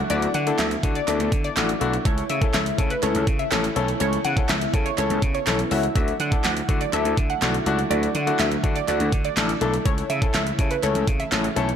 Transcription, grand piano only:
0.10 A3 D4 E4 F#4
0.47 A3 D4 E4 A4
0.83 A3 D4 E4 F#4
1.08 A3 D4 E4 A4
1.56 A3 D4 E4 F#4
1.81 A3 D4 E4 F#4
2.05 A3 C#4 E4 A4
2.41 A3 C#4 E4 A4
2.78 A3 C#4 E4 A4
3.02 A3 C#4 E4 A4
3.51 A3 C#4 E4 A4
3.76 A3 C#4 E4 A4
4.00 A3 C#4 E4 A4
4.37 A3 C#4 E4 A4
4.73 A3 C#4 E4 A4
4.98 A3 C#4 E4 A4
5.47 A3 C#4 E4 A4
5.71 A3 C#4 E4 F#4
5.95 A3 D4 E4 F#4
6.32 A3 D4 E4 A4
6.68 A3 D4 E4 F#4
6.93 A3 D4 E4 A4
7.42 A3 D4 E4 F#4
7.66 A3 D4 E4 F#4
7.90 A3 D4 E4 F#4
8.26 A3 D4 E4 F#4
8.63 A3 D4 E4 F#4
8.88 A3 D4 E4 F#4
9.37 A3 D4 E4 A4
9.61 A3 D4 E4 A4
9.85 A3 C#4 E4 A4
10.22 A3 C#4 E4 A4
10.59 A3 C#4 E4 A4
10.83 A3 C#4 E4 A4
11.31 A3 C#4 E4 A4
11.56 A3 C#4 E4 A4

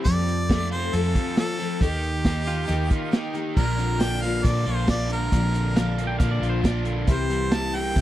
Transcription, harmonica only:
0.05 D5
0.72 C5
0.95 A4
1.39 A4
1.83 G4
3.57 A#4
4.01 G5
4.22 F5
4.44 D5
4.67 C5
4.90 D5
5.13 A#4
7.11 C5
7.54 A5
7.75 G5

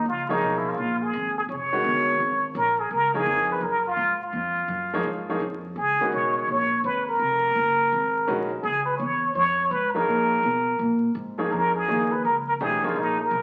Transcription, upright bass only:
0.05 C#2
0.41 B1
0.78 A#1
1.13 G#1
1.49 F1
1.84 G1
2.20 G#1
2.55 A#1
2.90 C#2
3.26 F2
3.61 F#2
3.97 G#2
4.33 F2
4.68 F#2
5.04 G#2
5.40 F2
5.76 C#2
5.99 muted upright bass stroke
6.12 B1
6.48 A#1
6.84 G#1
7.19 F1
7.55 F#1
7.92 G#1
8.28 A#1
8.63 C#2
8.99 E2
9.35 F2
9.71 G#2
10.07 A#2
10.43 B2
10.79 A#2
11.15 G#2
11.52 F2
11.89 D#2
12.25 C#2
12.60 B1
12.85 muted upright bass stroke
12.96 A#1
13.31 B1

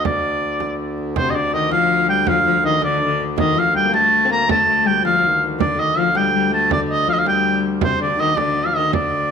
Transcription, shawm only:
0.05 D5
1.17 C5
1.30 D#5
1.35 D5
1.54 D#5
1.71 F5
2.09 G5
2.28 F5
2.65 D#5
2.84 D5
3.39 D#5
3.58 F5
3.76 G5
3.94 A5
4.32 A#5
4.50 A5
4.87 G5
5.05 F5
5.60 D5
5.80 D#5
5.98 F5
6.17 G5
6.54 A5
6.72 D5
6.90 D#5
7.09 D#5 F5
7.18 F5
7.28 G5
7.84 C5
8.02 D5
8.20 D#5
8.38 D5
8.66 F5
8.76 D#5
8.94 D5

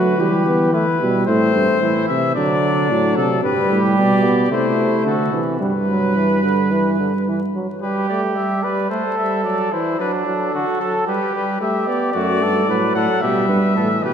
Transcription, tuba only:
Already playing: F#3
0.19 E3
1.02 B2
1.28 A2
1.55 G2
1.82 A2
2.10 C3
2.37 D3
2.91 A2
3.17 C3
3.44 G2
3.71 A2
3.98 B2
4.51 C3
5.06 D3
5.33 C3
5.61 G2
12.15 F#2
12.42 G2
12.68 A2
12.95 A2
13.23 B2
13.49 G2
13.77 A2
14.04 B2

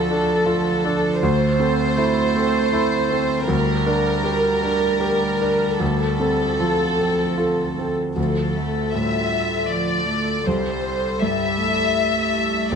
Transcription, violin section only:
Already playing: A4
1.22 C5
3.49 A#4
5.81 A4
8.17 A4
8.93 E5
9.69 D5
10.45 C5
11.21 E5
12.71 D5

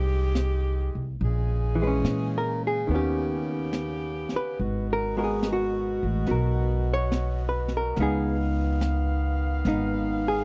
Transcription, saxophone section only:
Already playing: D#3 G#3 G4
1.23 C#3 G#3 G#4
2.87 B3 G4
4.61 B2 F#4
7.96 D#3 B3 F5

